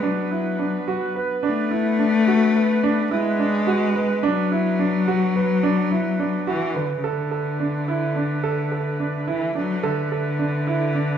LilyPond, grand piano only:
\new Staff \with { instrumentName = "Grand piano" } { \time 5/8 \key b \dorian \tempo 4 = 107 d'8 e'8 d'8 fis'8 b'8 | d'8 e'8 d'8 fis'8 b'8 | d'8 e'8 d'8 fis'8 b'8 | d'8 e'8 d'8 fis'8 b'8 |
d'8 e'8 d'8 fis'8 b'8 | a'8 a'8 d'8 e'8 d'8 | a'8 a'8 d'8 e'8 d'8 | a'8 a'8 d'8 e'8 d'8 | }